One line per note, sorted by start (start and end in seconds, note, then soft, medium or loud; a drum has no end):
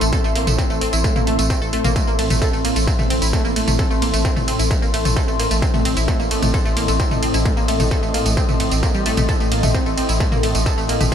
0.00 0.12 A1 medium
0.00 1.95 A2 medium
0.00 0.06 A3 medium
0.00 11.15 C4 medium
0.00 11.15 A4 medium
0.00 4.79 E5 medium
0.00 11.15 C6 medium
0.00 closed hi-hat medium
0.00 tambourine medium
0.13 0.20 A4 medium
0.13 kick loud
0.13 closed hi-hat medium
0.13 tambourine medium
0.24 0.29 A3 medium
0.24 tambourine soft
0.35 0.46 A1 loud
0.35 0.39 A#3 medium
0.35 open hi-hat loud
0.47 0.58 A1 medium
0.47 0.54 A3 medium
0.47 closed hi-hat medium
0.47 mid tom medium
0.47 tambourine medium
0.58 0.66 C4 medium
0.58 kick loud
0.58 closed hi-hat medium
0.58 tambourine medium
0.70 0.81 A1 medium
0.70 0.77 A3 medium
0.70 tambourine soft
0.81 0.84 C4 medium
0.81 open hi-hat loud
0.93 1.04 A1 medium
0.93 0.98 E4 medium
0.93 closed hi-hat medium
0.93 tambourine medium
1.04 1.09 A3 medium
1.04 kick loud
1.04 closed hi-hat medium
1.04 tambourine medium
1.16 1.21 A#3 medium
1.16 mid tom loud
1.16 tambourine soft
1.27 1.38 A1 loud
1.27 1.35 A3 medium
1.27 open hi-hat loud
1.39 1.50 A1 medium
1.39 1.46 A3 medium
1.39 closed hi-hat medium
1.39 tambourine medium
1.50 1.53 C4 medium
1.50 kick loud
1.50 closed hi-hat medium
1.50 tambourine medium
1.62 1.73 A1 medium
1.62 1.66 A4 medium
1.62 tambourine soft
1.73 1.78 A3 medium
1.73 open hi-hat loud
1.84 1.96 A1 medium
1.84 1.89 A#3 loud
1.84 closed hi-hat medium
1.84 mid tom medium
1.84 tambourine medium
1.96 11.15 A2 medium
1.96 2.01 A3 medium
1.96 kick loud
1.96 closed hi-hat medium
1.96 tambourine medium
2.07 2.12 A#3 medium
2.07 tambourine soft
2.19 2.30 A1 loud
2.19 2.24 A3 medium
2.19 open hi-hat loud
2.19 ride medium
2.30 2.41 A1 medium
2.30 2.35 A3 medium
2.30 closed hi-hat medium
2.30 mid tom medium
2.30 tambourine medium
2.42 2.49 A4 medium
2.42 kick loud
2.42 closed hi-hat medium
2.42 tambourine medium
2.53 2.64 A1 medium
2.53 2.58 A3 medium
2.53 tambourine soft
2.65 2.68 A#3 medium
2.65 open hi-hat loud
2.65 ride medium
2.76 2.87 A1 medium
2.76 2.83 A3 medium
2.76 closed hi-hat medium
2.76 tambourine medium
2.87 2.95 C4 medium
2.87 kick loud
2.87 closed hi-hat medium
2.87 tambourine medium
2.99 3.06 A3 medium
2.99 mid tom medium
2.99 tambourine soft
3.10 3.21 A1 loud
3.10 3.13 C4 medium
3.10 open hi-hat loud
3.10 ride medium
3.22 3.33 A1 medium
3.22 3.27 E4 medium
3.22 closed hi-hat medium
3.22 tambourine medium
3.33 3.38 A3 medium
3.33 kick loud
3.33 closed hi-hat medium
3.33 tambourine medium
3.45 3.56 A1 medium
3.45 3.50 A#3 medium
3.45 tambourine soft
3.56 3.61 A3 medium
3.56 open hi-hat loud
3.56 ride medium
3.68 3.79 A1 medium
3.68 3.73 A3 medium
3.68 closed hi-hat medium
3.68 mid tom medium
3.68 tambourine medium
3.79 3.86 A4 medium
3.79 kick loud
3.79 closed hi-hat medium
3.79 tambourine soft
3.91 3.95 A3 medium
3.91 tambourine soft
4.02 4.13 A1 loud
4.02 4.05 A#3 medium
4.02 open hi-hat loud
4.02 ride medium
4.13 4.25 A1 medium
4.13 4.21 A3 medium
4.13 closed hi-hat medium
4.13 tambourine medium
4.25 4.32 C4 medium
4.25 kick loud
4.25 closed hi-hat medium
4.25 tambourine soft
4.36 4.47 A1 medium
4.36 4.44 A3 medium
4.36 mid tom medium
4.36 tambourine soft
4.48 4.51 C4 medium
4.48 open hi-hat loud
4.48 ride medium
4.59 4.70 A1 medium
4.59 4.64 E4 medium
4.59 closed hi-hat medium
4.59 tambourine medium
4.66 11.15 D#5 medium
4.71 4.76 A3 medium
4.71 kick loud
4.71 closed hi-hat medium
4.71 tambourine medium
4.82 4.87 A#3 medium
4.82 tambourine soft
4.93 5.04 A1 loud
4.93 4.99 A3 medium
4.93 open hi-hat loud
4.93 ride medium
5.05 5.16 A1 medium
5.05 5.10 A3 medium
5.05 closed hi-hat medium
5.05 mid tom medium
5.05 tambourine medium
5.17 5.24 A4 medium
5.17 kick loud
5.17 closed hi-hat medium
5.17 tambourine medium
5.28 5.39 A1 medium
5.28 5.33 A3 medium
5.28 tambourine soft
5.39 5.42 A#3 medium
5.39 open hi-hat loud
5.39 ride medium
5.51 5.62 A1 medium
5.51 5.58 A3 medium
5.51 closed hi-hat medium
5.51 tambourine medium
5.62 5.70 C4 medium
5.62 kick loud
5.62 closed hi-hat medium
5.62 tambourine soft
5.74 5.81 A3 medium
5.74 mid tom medium
5.74 tambourine soft
5.85 5.96 A1 loud
5.85 5.88 C4 medium
5.85 open hi-hat loud
5.85 ride medium
5.97 6.08 A1 medium
5.97 6.02 E4 medium
5.97 closed hi-hat medium
5.97 tambourine medium
6.08 6.13 A3 medium
6.08 kick loud
6.08 closed hi-hat medium
6.08 tambourine medium
6.20 6.31 A1 medium
6.20 6.24 A#3 medium
6.20 tambourine soft
6.31 6.36 A3 medium
6.31 open hi-hat loud
6.31 ride medium
6.42 6.54 A1 medium
6.42 6.47 A3 medium
6.42 closed hi-hat medium
6.42 mid tom medium
6.42 tambourine medium
6.54 6.61 A4 medium
6.54 kick loud
6.54 closed hi-hat medium
6.54 tambourine medium
6.65 6.70 A3 medium
6.65 tambourine soft
6.77 6.88 A1 loud
6.77 6.80 A#3 medium
6.77 open hi-hat loud
6.77 ride medium
6.88 6.99 A1 medium
6.88 6.96 A3 medium
6.88 closed hi-hat medium
6.88 tambourine medium
7.00 7.07 C4 medium
7.00 kick loud
7.00 closed hi-hat medium
7.00 tambourine medium
7.11 7.22 A1 medium
7.11 7.18 A3 medium
7.11 mid tom medium
7.11 tambourine soft
7.23 7.26 C4 medium
7.23 open hi-hat loud
7.23 ride medium
7.34 7.45 A1 medium
7.34 7.39 E4 medium
7.34 closed hi-hat medium
7.34 tambourine medium
7.45 7.50 A3 medium
7.45 kick loud
7.45 closed hi-hat medium
7.45 tambourine soft
7.57 7.62 A#3 medium
7.57 tambourine soft
7.68 7.79 A1 loud
7.68 7.73 A3 medium
7.68 open hi-hat loud
7.68 ride medium
7.80 7.91 A1 medium
7.80 7.85 A3 medium
7.80 closed hi-hat medium
7.80 mid tom loud
7.80 tambourine medium
7.91 7.99 A4 medium
7.91 kick loud
7.91 closed hi-hat medium
7.91 tambourine medium
8.03 8.14 A1 medium
8.03 8.08 A3 medium
8.03 tambourine soft
8.14 8.17 A#3 medium
8.14 open hi-hat loud
8.14 ride medium
8.26 8.37 A1 medium
8.26 8.33 A3 medium
8.26 closed hi-hat medium
8.26 tambourine medium
8.37 8.44 C4 medium
8.37 kick loud
8.37 closed hi-hat medium
8.37 tambourine medium
8.49 8.56 A3 medium
8.49 mid tom loud
8.49 tambourine soft
8.60 8.71 A1 loud
8.60 8.63 A3 medium
8.60 open hi-hat loud
8.60 ride medium
8.71 8.83 A1 medium
8.71 8.76 C4 medium
8.71 closed hi-hat medium
8.71 tambourine medium
8.83 8.88 A#3 medium
8.83 kick loud
8.83 closed hi-hat medium
8.83 tambourine medium
8.94 9.06 A1 medium
8.94 8.97 G3 loud
8.94 tambourine soft
9.06 9.11 A3 loud
9.06 open hi-hat loud
9.06 ride medium
9.17 9.28 A1 medium
9.17 9.25 A3 medium
9.17 closed hi-hat medium
9.17 mid tom loud
9.17 tambourine medium
9.29 9.36 A4 medium
9.29 kick loud
9.29 closed hi-hat medium
9.29 tambourine medium
9.40 9.45 A3 medium
9.40 tambourine soft
9.52 9.63 A1 loud
9.52 9.55 A#3 medium
9.52 open hi-hat loud
9.52 ride medium
9.63 9.74 A1 medium
9.63 9.70 A3 medium
9.63 closed hi-hat medium
9.63 mid tom loud
9.63 tambourine medium
9.75 9.82 C4 medium
9.75 kick loud
9.75 closed hi-hat medium
9.75 tambourine medium
9.86 9.97 A1 medium
9.86 9.93 A3 medium
9.86 tambourine soft
9.97 10.00 C4 medium
9.97 open hi-hat loud
9.97 ride medium
10.09 10.20 A1 medium
10.09 10.14 E4 medium
10.09 closed hi-hat medium
10.09 tambourine medium
10.20 10.25 A3 medium
10.20 kick loud
10.20 closed hi-hat medium
10.20 tambourine medium
10.32 10.37 A#3 medium
10.32 mid tom loud
10.32 tambourine soft
10.43 10.54 A1 loud
10.43 10.48 A3 medium
10.43 open hi-hat loud
10.43 ride medium
10.55 10.66 A1 medium
10.55 10.60 A3 medium
10.55 closed hi-hat medium
10.55 tambourine medium
10.66 10.73 A4 medium
10.66 kick loud
10.66 closed hi-hat medium
10.66 tambourine medium
10.78 10.89 A1 medium
10.78 10.82 A3 medium
10.78 tambourine soft
10.89 10.92 A#3 medium
10.89 open hi-hat loud
10.89 ride medium
11.01 11.12 A1 medium
11.01 11.08 A3 medium
11.01 closed hi-hat medium
11.01 mid tom loud
11.01 tambourine medium